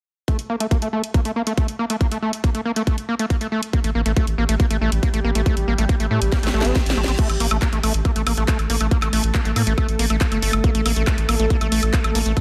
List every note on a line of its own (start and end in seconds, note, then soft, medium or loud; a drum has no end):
0.28 0.37 A3 medium
0.28 kick loud
0.28 closed hi-hat medium
0.39 closed hi-hat medium
0.50 0.56 A#3 medium
0.60 0.67 A3 medium
0.60 closed hi-hat medium
0.71 0.77 A#3 medium
0.71 kick loud
0.71 closed hi-hat medium
0.82 0.88 A3 medium
0.82 closed hi-hat medium
0.93 1.02 A3 medium
1.04 closed hi-hat medium
1.14 1.21 A#3 medium
1.14 kick loud
1.14 closed hi-hat medium
1.25 1.31 A3 medium
1.25 closed hi-hat medium
1.36 1.42 A#3 medium
1.47 1.53 A3 medium
1.47 closed hi-hat medium
1.58 1.67 A3 medium
1.58 kick loud
1.58 closed hi-hat medium
1.68 closed hi-hat medium
1.79 1.85 A#3 medium
1.90 1.96 A3 medium
1.90 closed hi-hat medium
2.01 2.07 A#3 medium
2.01 kick loud
2.01 closed hi-hat medium
2.12 2.18 A3 medium
2.12 closed hi-hat medium
2.22 2.32 A3 medium
2.33 closed hi-hat medium
2.44 2.50 A#3 medium
2.44 kick loud
2.44 closed hi-hat medium
2.55 2.61 A3 medium
2.55 closed hi-hat medium
2.65 2.72 A#3 medium
2.76 2.82 A3 medium
2.76 closed hi-hat medium
2.87 2.96 A3 medium
2.87 kick loud
2.87 closed hi-hat medium
2.98 closed hi-hat medium
3.09 3.15 A#3 medium
3.19 3.26 A3 medium
3.19 closed hi-hat medium
3.30 3.36 A#3 medium
3.30 kick loud
3.30 closed hi-hat medium
3.41 3.47 A3 medium
3.41 closed hi-hat medium
3.52 3.61 A3 medium
3.63 closed hi-hat medium
3.73 7.20 G3 medium
3.73 3.80 A#3 medium
3.73 7.20 G4 medium
3.73 kick loud
3.73 closed hi-hat medium
3.84 3.91 A1 medium
3.84 3.90 A3 medium
3.84 closed hi-hat medium
3.95 4.02 A1 loud
3.95 4.01 A#3 medium
4.06 4.13 A1 medium
4.06 4.12 A3 medium
4.06 closed hi-hat medium
4.17 4.26 A3 medium
4.17 kick loud
4.17 closed hi-hat medium
4.27 4.34 A1 medium
4.27 closed hi-hat medium
4.38 4.45 A1 loud
4.38 4.44 A#3 medium
4.49 4.56 A1 medium
4.49 4.55 A3 medium
4.49 closed hi-hat medium
4.60 4.66 A#3 medium
4.60 kick loud
4.60 closed hi-hat medium
4.71 4.77 A1 medium
4.71 4.77 A3 medium
4.71 closed hi-hat medium
4.81 4.88 A1 loud
4.81 4.91 A3 medium
4.92 4.99 A1 medium
4.92 closed hi-hat medium
5.03 5.09 A#3 medium
5.03 kick loud
5.03 closed hi-hat medium
5.14 5.20 A1 medium
5.14 5.20 A3 medium
5.14 closed hi-hat medium
5.24 5.31 A1 loud
5.24 5.31 A#3 medium
5.35 5.42 A1 medium
5.35 5.41 A3 medium
5.35 closed hi-hat medium
5.46 5.55 A3 medium
5.46 kick loud
5.46 closed hi-hat medium
5.57 5.64 A1 medium
5.57 closed hi-hat medium
5.68 5.74 A1 loud
5.68 5.74 A#3 medium
5.78 5.85 A1 medium
5.78 5.85 A3 medium
5.78 closed hi-hat medium
5.89 5.95 A#3 medium
5.89 kick loud
5.89 closed hi-hat medium
6.00 6.07 A1 medium
6.00 6.06 A3 medium
6.00 closed hi-hat medium
6.11 6.18 A2 loud
6.11 6.20 A3 medium
6.22 6.28 A1 medium
6.22 closed hi-hat medium
6.32 6.39 A#3 medium
6.32 kick loud
6.32 snare medium
6.32 closed hi-hat medium
6.32 reverse cymbal medium
6.43 6.50 A1 medium
6.43 6.49 A3 medium
6.43 snare medium
6.43 closed hi-hat medium
6.54 6.61 A1 loud
6.54 6.66 A3 medium
6.61 6.72 A1 medium
6.61 6.77 C4 loud
6.61 snare medium
6.61 closed hi-hat medium
6.76 6.82 A3 medium
6.76 kick loud
6.76 snare medium
6.76 closed hi-hat medium
6.86 6.93 A1 medium
6.86 snare medium
6.86 closed hi-hat medium
6.97 7.04 A1 loud
6.97 7.01 A3 medium
7.04 7.15 A1 medium
7.04 7.12 C4 medium
7.04 snare loud
7.04 closed hi-hat medium
7.19 7.28 A3 medium
7.19 12.41 A3 medium
7.19 12.41 A4 medium
7.19 kick loud
7.19 closed hi-hat medium
7.19 crash medium
7.29 7.36 A1 medium
7.29 closed hi-hat medium
7.29 high woodblock soft
7.40 7.47 A1 loud
7.40 7.46 A#3 medium
7.40 open hi-hat loud
7.51 7.58 A1 medium
7.51 7.57 A3 medium
7.51 closed hi-hat medium
7.51 high woodblock medium
7.62 7.68 A#3 medium
7.62 kick loud
7.62 clap loud
7.62 closed hi-hat medium
7.73 7.79 A1 medium
7.73 7.79 A3 medium
7.73 closed hi-hat medium
7.83 7.90 A1 loud
7.83 7.93 A3 medium
7.83 open hi-hat loud
7.83 high woodblock soft
7.94 8.01 A1 medium
7.94 closed hi-hat medium
8.05 8.11 A#3 medium
8.05 kick loud
8.05 closed hi-hat medium
8.05 high woodblock soft
8.16 8.23 A1 medium
8.16 8.22 A3 medium
8.16 closed hi-hat medium
8.27 8.33 A1 loud
8.27 8.33 A#3 medium
8.27 open hi-hat loud
8.27 high woodblock medium
8.37 8.44 A1 medium
8.37 8.44 A3 medium
8.37 closed hi-hat medium
8.48 8.57 A3 medium
8.48 kick loud
8.48 clap loud
8.48 closed hi-hat medium
8.59 8.66 A1 medium
8.59 closed hi-hat medium
8.59 high woodblock soft
8.70 8.77 A1 loud
8.70 8.76 A#3 medium
8.70 open hi-hat loud
8.81 8.87 A1 medium
8.81 8.87 A3 medium
8.81 closed hi-hat medium
8.81 high woodblock soft
8.91 8.98 A#3 medium
8.91 kick loud
8.91 closed hi-hat medium
9.02 9.09 A1 medium
9.02 9.08 A3 medium
9.02 clap soft
9.02 closed hi-hat medium
9.02 high woodblock medium
9.13 9.20 A1 loud
9.13 9.22 A3 medium
9.13 open hi-hat loud
9.24 9.31 A1 medium
9.24 closed hi-hat medium
9.35 9.41 A#3 medium
9.35 kick loud
9.35 clap loud
9.35 closed hi-hat medium
9.35 high woodblock soft
9.45 9.52 A1 medium
9.45 9.52 A3 medium
9.45 closed hi-hat medium
9.56 9.63 A2 loud
9.56 9.62 A#3 medium
9.56 open hi-hat loud
9.56 high woodblock soft
9.67 9.74 A1 medium
9.67 9.73 A3 medium
9.67 closed hi-hat medium
9.78 9.87 A3 medium
9.78 kick loud
9.78 closed hi-hat medium
9.78 high woodblock medium
9.89 9.95 A1 medium
9.89 closed hi-hat medium
9.99 10.06 A1 loud
9.99 10.05 A#3 medium
9.99 open hi-hat loud
10.10 10.17 A1 medium
10.10 10.16 A3 medium
10.10 closed hi-hat medium
10.10 high woodblock soft
10.21 10.27 A#3 medium
10.21 kick loud
10.21 clap loud
10.21 closed hi-hat medium
10.32 10.38 G1 medium
10.32 10.38 A3 medium
10.32 closed hi-hat medium
10.32 high woodblock soft
10.42 10.49 G1 loud
10.42 10.52 A3 medium
10.42 open hi-hat loud
10.53 10.60 G1 medium
10.53 closed hi-hat medium
10.53 high woodblock medium
10.64 10.70 A#3 medium
10.64 kick loud
10.64 closed hi-hat medium
10.75 10.82 A1 medium
10.75 10.81 A3 medium
10.75 closed hi-hat medium
10.86 10.92 A1 loud
10.86 10.92 A#3 medium
10.86 open hi-hat loud
10.86 high woodblock soft
10.96 11.03 A1 medium
10.96 11.03 A3 medium
10.96 closed hi-hat medium
11.07 11.16 A3 medium
11.07 kick loud
11.07 clap loud
11.07 closed hi-hat medium
11.07 high woodblock soft
11.18 11.25 A1 medium
11.18 closed hi-hat medium
11.29 11.36 A1 loud
11.29 11.35 A#3 medium
11.29 open hi-hat loud
11.29 high woodblock medium
11.40 11.46 A1 medium
11.40 11.46 A3 medium
11.40 closed hi-hat medium
11.50 11.57 A#3 medium
11.50 kick loud
11.50 closed hi-hat medium
11.61 11.68 A1 medium
11.61 11.67 A3 medium
11.61 closed hi-hat medium
11.61 high woodblock soft
11.72 11.79 A1 loud
11.72 11.81 A3 medium
11.72 open hi-hat loud
11.83 11.90 A1 medium
11.83 closed hi-hat medium
11.83 high woodblock soft
11.94 12.00 A#3 medium
11.94 kick loud
11.94 clap loud
11.94 closed hi-hat medium
12.04 12.11 A1 medium
12.04 12.10 A3 medium
12.04 closed hi-hat medium
12.04 high woodblock medium
12.15 12.22 A1 loud
12.15 12.21 A#3 medium
12.15 open hi-hat loud
12.26 12.33 A1 medium
12.26 12.32 A3 medium
12.26 closed hi-hat medium
12.37 12.41 A3 medium
12.37 kick loud
12.37 closed hi-hat medium
12.37 high woodblock soft